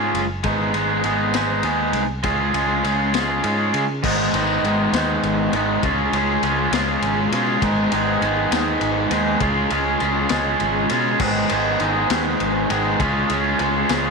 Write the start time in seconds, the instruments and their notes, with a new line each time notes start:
Already playing: picked electric bass G#2, overdriven electric guitar G#3 C#4 F4 G#4
0.14 picked electric bass F#1, ride
0.43 picked electric bass G#1, overdriven electric guitar G#3 B3 D#4 G#4, kick, ride
0.74 picked electric bass G#1, overdriven electric guitar G#3 B3 D#4 G#4, ride
1.04 picked electric bass G#1, overdriven electric guitar G#3 B3 D#4 G#4, ride
1.34 overdriven electric guitar G#3 B3 D#4 G#4, snare, ride
1.63 picked electric bass D#2, overdriven electric guitar G#3 B3 D#4 G#4, ride
1.93 picked electric bass C2, ride
2.23 picked electric bass C#2, overdriven electric guitar G#3 C#4 F4 G#4, kick, ride
2.54 picked electric bass C#2, overdriven electric guitar G#3 C#4 F4 G#4, ride
2.84 picked electric bass C#2, overdriven electric guitar G#3 C#4 F4 G#4, ride
3.14 overdriven electric guitar G#3 C#4 F4 G#4, snare, ride
3.44 picked electric bass G#2, overdriven electric guitar G#3 C#4 F4 G#4, ride
3.74 picked electric bass C#3, ride
4.03 picked electric bass G#1, overdriven electric guitar G#2 D#3 G#3 B3 D#4, kick, crash
4.33 picked electric bass G#1, overdriven electric guitar G#2 D#3 G#3 B3 D#4, ride
4.63 picked electric bass G#1, overdriven electric guitar G#2 D#3 G#3 B3 D#4, ride
4.93 picked electric bass D#2, overdriven electric guitar G#2 D#3 G#3 B3 D#4, snare, ride
5.23 picked electric bass G#1, ride
5.53 picked electric bass G#1, overdriven electric guitar G#2 D#3 G#3 B3 D#4, ride
5.83 picked electric bass C#2, overdriven electric guitar C#3 G#3 C#4 F4 G#4, kick, ride
6.12 picked electric bass C#2, overdriven electric guitar C#3 G#3 C#4 F4 G#4, ride
6.42 picked electric bass C#2, overdriven electric guitar C#3 G#3 C#4 F4 G#4, ride
6.72 picked electric bass C#2, overdriven electric guitar C#3 G#3 C#4 F4 G#4, snare, ride
7.02 picked electric bass G#1, ride
7.32 picked electric bass B2, overdriven electric guitar C#3 G#3 C#4 F4 G#4, ride
7.62 picked electric bass G#1, overdriven electric guitar G#2 D#3 G#3 B3 D#4 G#4, kick, ride
7.92 picked electric bass G#1, overdriven electric guitar G#2 D#3 G#3 B3 D#4 G#4, ride
8.21 picked electric bass G#1, overdriven electric guitar G#2 D#3 G#3 B3 D#4 G#4, ride
8.51 picked electric bass D#2, overdriven electric guitar G#2 D#3 G#3 B3 D#4 G#4, snare, ride
8.81 picked electric bass G#1, ride
9.10 picked electric bass D#2, overdriven electric guitar G#2 D#3 G#3 B3 D#4 G#4, ride
9.40 picked electric bass C#2, overdriven electric guitar C#3 G#3 C#4 F4 G#4, kick, ride
9.70 picked electric bass C#2, overdriven electric guitar C#3 G#3 C#4 F4 G#4, ride
10.00 picked electric bass C#2, overdriven electric guitar C#3 G#3 C#4 F4 G#4, ride
10.29 picked electric bass C#2, overdriven electric guitar C#3 G#3 C#4 F4 G#4, snare, ride
10.60 picked electric bass G#1, ride
10.89 picked electric bass B2, overdriven electric guitar C#3 G#3 C#4 F4 G#4, ride
11.20 picked electric bass G#1, overdriven electric guitar G#2 D#3 G#3 B3 D#4 G#4, kick, crash
11.49 picked electric bass G#1, overdriven electric guitar G#2 D#3 G#3 B3 D#4 G#4, ride
11.80 picked electric bass G#1, overdriven electric guitar G#2 D#3 G#3 B3 D#4 G#4, ride
12.09 picked electric bass D#2, overdriven electric guitar G#2 D#3 G#3 B3 D#4 G#4, snare, ride
12.40 picked electric bass G#1, ride
12.69 picked electric bass G#1, overdriven electric guitar G#2 D#3 G#3 B3 D#4 G#4, ride
12.99 picked electric bass C#2, overdriven electric guitar C#3 G#3 C#4 F4 G#4, kick, ride
13.29 picked electric bass C#2, overdriven electric guitar C#3 G#3 C#4 F4 G#4, ride
13.59 picked electric bass C#2, overdriven electric guitar C#3 G#3 C#4 F4 G#4, ride
13.89 picked electric bass C#2, overdriven electric guitar C#3 G#3 C#4 F4 G#4, snare, ride